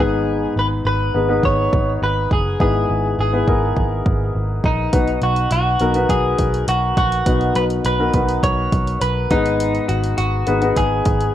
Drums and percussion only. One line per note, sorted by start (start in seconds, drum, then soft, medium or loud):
1.43 kick medium
1.73 kick medium
2.31 kick medium
2.60 kick medium
3.48 kick medium
3.77 kick medium
4.06 kick medium
4.64 kick medium
4.93 kick medium
4.93 closed hi-hat medium
5.08 closed hi-hat soft
5.22 closed hi-hat medium
5.36 closed hi-hat soft
5.51 closed hi-hat medium
5.80 closed hi-hat medium
5.94 closed hi-hat soft
6.09 kick medium
6.09 closed hi-hat medium
6.38 kick medium
6.38 closed hi-hat medium
6.54 closed hi-hat soft
6.68 closed hi-hat medium
6.97 kick medium
6.97 closed hi-hat medium
7.12 closed hi-hat soft
7.26 kick loud
7.26 closed hi-hat medium
7.41 closed hi-hat soft
7.56 closed hi-hat medium
7.70 closed hi-hat soft
7.85 closed hi-hat medium
8.13 kick medium
8.13 closed hi-hat medium
8.28 closed hi-hat soft
8.43 kick medium
8.43 closed hi-hat medium
8.72 kick medium
8.72 closed hi-hat medium
8.87 closed hi-hat soft
9.01 closed hi-hat medium
9.31 kick medium
9.31 closed hi-hat medium
9.46 closed hi-hat soft
9.60 closed hi-hat medium
9.75 closed hi-hat soft
9.89 closed hi-hat medium
10.04 closed hi-hat soft
10.18 closed hi-hat medium
10.47 closed hi-hat medium
10.62 closed hi-hat soft
10.76 kick medium
10.76 closed hi-hat medium
11.06 kick medium
11.06 closed hi-hat medium
11.21 closed hi-hat soft